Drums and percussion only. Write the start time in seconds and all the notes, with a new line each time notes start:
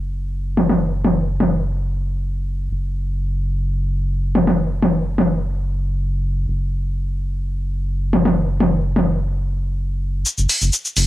0.57 mid tom
0.69 mid tom
1.05 mid tom
1.40 mid tom
4.35 mid tom
4.47 mid tom
4.82 mid tom
5.18 mid tom
8.13 mid tom
8.25 mid tom
8.60 mid tom
8.96 mid tom
10.26 shaker
10.38 shaker
10.49 open hi-hat, shaker
10.62 shaker
10.73 shaker
10.85 shaker
10.97 open hi-hat, shaker